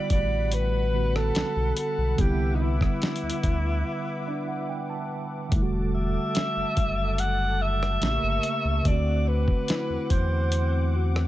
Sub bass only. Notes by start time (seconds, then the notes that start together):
0.10 A1
1.35 B1
1.56 B1
1.98 B1
2.18 C2
3.23 D2
3.43 D2
5.52 E1
6.56 F#1
6.77 F#1
8.02 A1
8.23 G1
8.64 C#2
8.85 D2
9.90 E2
10.10 E2